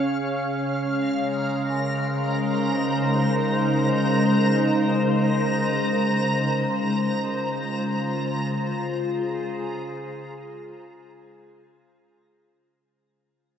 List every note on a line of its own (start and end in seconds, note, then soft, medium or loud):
0.00 13.00 C#3 medium
0.00 0.61 C#4 medium
0.00 13.00 C#4 medium
0.00 0.62 G#4 medium
0.00 0.61 C#5 medium
0.00 0.63 F5 medium
0.00 3.57 F5 medium
0.00 0.63 F6 medium
0.61 12.92 C#3 medium
0.61 12.95 A#5 medium
0.61 12.96 A#6 medium
0.74 12.92 G#3 medium
1.19 8.73 A#4 medium
1.96 12.92 C5 medium
2.32 7.25 D#4 medium
7.00 12.92 F4 medium
8.49 12.92 G#4 medium